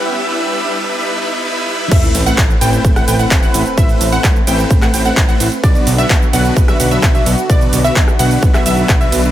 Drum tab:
CC |----------------|x---------------|----------------|----------------|
RD |----------------|--x---x---x---x-|--x---x---x---x-|--x---x---x---x-|
HH |----------------|xxoxx-oxxxoxxxox|xxoxx-oxxxoxxxox|xxoxx-oxxxoxxxox|
SH |----------------|xxxxxxxxxxxxxxxx|xxxxxxxxxxxxxxxx|xxxxxxxxxxxxxxxx|
CP |----------------|----x-------x---|----x----x--x---|----x-------x---|
SD |----------------|---------r------|---------r------|---------r------|
BD |----------------|o---o---o---o---|o---o---o---o---|o---o---o---o---|

CC |----------------|
RD |--x---x---x---x-|
HH |xxoxx-ooxxoxxxox|
SH |xxxxxxxxxxxxxxxx|
CP |----x----x--x---|
SD |-----r---r------|
BD |o---o---o---o---|